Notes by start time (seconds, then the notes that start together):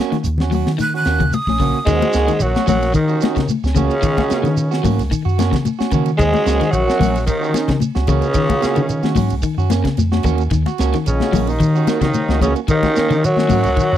0.00 A#3 C#4 F#4, snare
0.12 D#3, snare, closed hi-hat, high conga
0.24 D#2, closed hi-hat, shekere
0.38 F#4, snare, low conga
0.42 C#4
0.51 F#3 C#4 F#4, muted clean electric guitar stroke, open hi-hat, high conga, shekere
0.67 D#3, snare
0.78 D#3 F#6, closed hi-hat, high conga, shekere
0.94 C#4 F#4 F#6
1.05 D#2 A#3 C#4 F#4, snare, closed hi-hat, shekere
1.20 C#3, kick, closed hi-hat, low conga
1.33 D#6, closed hi-hat, high conga, shekere
1.47 A#1 C#4, kick, snare, high conga
1.59 C#3 A#3 C#4 F#4, kick, open hi-hat, shekere
1.86 D#2 G#2 D#3 G#3 A#3 C#4 F#4 G#4, kick, ride bell, shekere
2.02 C#4 F#4, high conga, shekere
2.13 C#2 A#3 C#4 F#4, snare, ride bell, shekere
2.28 D#3, snare, ride bell, shekere
2.40 A#1 F#2 F#3 F#4, ride bell, shekere
2.55 C#4 F#4, snare, high conga, shekere
2.67 A#1 F#2 F#3 A#3 C#4 F#4, kick, open hi-hat, high conga, low conga, shekere
2.82 snare, ride bell, shekere
2.94 D#3 D#4, kick, ride bell, shekere
2.98 D#2
3.08 C#4 F#4, shekere
3.21 C#4 F#4, snare, ride bell, high conga, shekere
3.36 C#3, kick, snare, ride bell, shekere
3.48 ride bell, high conga, shekere
3.64 C#2 C#4, muted clean electric guitar stroke, snare, shekere
3.75 C#2 C#3 A#3 C#4 F#4, kick, ride bell, high conga, low conga, shekere
3.90 ride bell, shekere
4.02 D#3, kick, ride bell, shekere
4.17 C#4 F#4, kick, snare, high conga, shekere
4.30 A#3 C#4 F#4, muted fingered electric bass stroke, snare, ride bell, shekere
4.43 D#3, snare, ride bell, shekere
4.57 ride bell, shekere
4.71 C#4 F#4, snare, shekere
4.83 G#2 F#3 A#3 C#4 F#4, kick, open hi-hat, high conga, low conga, shekere
4.98 C#2, snare, ride bell, shekere
5.11 D#3, kick, ride bell, shekere
5.25 F#2 F#4, shekere
5.38 A#3 C#4 F#4, snare, ride bell, high conga, shekere
5.51 C#3, kick, snare, ride bell, low conga, shekere
5.65 ride bell, high conga, shekere
5.79 C#4 F#4, snare, high conga, shekere
5.91 C#3 D#3 A#3 C#4 F#4, kick, ride bell, low conga, shekere
6.06 ride bell, shekere
6.18 D#2 G#2 D#3 G#3 G#4, kick, ride bell, shekere
6.33 C#4 F#4, high conga, shekere
6.45 C#2 A#3 C#4 F#4, snare, ride bell, shekere
6.61 D#3, snare, ride bell, shekere
6.70 A#1 F#2 F#3, shekere
6.74 F#4, ride bell
6.87 C#4 F#4, snare, shekere
6.99 A#1 F#3 A#3 C#4 F#4, kick, snare, open hi-hat, high conga, low conga, shekere
7.16 snare, ride bell, shekere
7.26 D#2 D#3 D#4, kick, ride bell, shekere
7.41 C#4 F#4, shekere
7.53 C#4, muted clean electric guitar stroke, snare, ride bell, high conga, shekere
7.68 C#3, kick, snare, ride bell, low conga, shekere
7.80 ride bell, high conga, shekere
7.95 C#2 C#4 F#4, snare, shekere
8.07 C#2 C#3 A#3 C#4 F#4, kick, ride bell, low conga, shekere
8.22 ride bell, shekere
8.34 D#3, kick, ride bell, shekere
8.48 C#4 F#4, kick, high conga, shekere
8.61 A#3 F#4, muted clean electric guitar stroke, muted fingered electric bass stroke, snare, ride bell, shekere
8.76 D#3, ride bell, shekere
8.89 ride bell, shekere
9.03 C#4 F#4, snare, high conga, shekere
9.15 G#2 F#3 C#4 F#4, muted clean electric guitar stroke, kick, snare, open hi-hat, high conga, low conga, shekere
9.30 C#2, ride bell, shekere
9.42 D#3, kick, ride bell, shekere
9.57 F#2 C#4 F#4, shekere
9.70 A#3 C#4, muted clean electric guitar stroke, snare, ride bell, high conga, shekere
9.84 C#3, kick, snare, ride bell, shekere
9.97 F2, snare, ride bell, high conga, shekere
10.12 C#4 F#4, snare, high conga, shekere
10.23 D#2 A#3 C#4 F#4, muted clean electric guitar stroke, kick, snare, ride bell, high conga, low conga, shekere
10.38 ride bell, shekere
10.50 D#2 D#3, kick, snare, ride bell, shekere
10.66 F#4, snare, high conga, shekere
10.78 C#2 A#3 C#4 F#4, snare, ride bell, shekere
10.93 D#3, snare, ride bell, shekere
11.06 A#1 C#2 C#3 C#4, ride bell, shekere
11.20 C#4 F#4, snare, high conga, shekere
11.32 A#1 F#3 A#3 C#4 F#4, kick, open hi-hat, high conga, low conga, shekere
11.47 D#2 D#3 D#4, ride bell, shekere
11.60 D#3, kick, ride bell, shekere
11.75 C#4 F#4, shekere
11.87 A#3 F#4, muted clean electric guitar stroke, snare, ride bell, high conga, shekere
12.01 D#2 C#3 D#3 D#4, kick, snare, ride bell, low conga, shekere
12.14 ride bell, high conga, shekere
12.29 C#2 C#4 F#4, snare, high conga, shekere
12.41 C#2 C#3 A#3 C#4 F#4, kick, ride bell, high conga, low conga, shekere
12.56 ride bell, shekere
12.68 D#2 D#3 D#4, kick, ride bell, shekere
12.83 C#4 F#4, kick, snare, high conga, shekere
12.96 A#3 C#4, muted fingered electric bass stroke, snare, ride bell, shekere
13.10 D#3, snare, ride bell, shekere
13.23 F#2 F#3 F#4, ride bell, shekere
13.37 C#4 F#4, snare, high conga, shekere
13.49 G#2 F#3 A#3 C#4 F#4, kick, open hi-hat, high conga, low conga, shekere
13.64 C#2, ride bell, shekere
13.76 D#3, kick, ride bell, shekere
13.93 F#2 C#4 F#4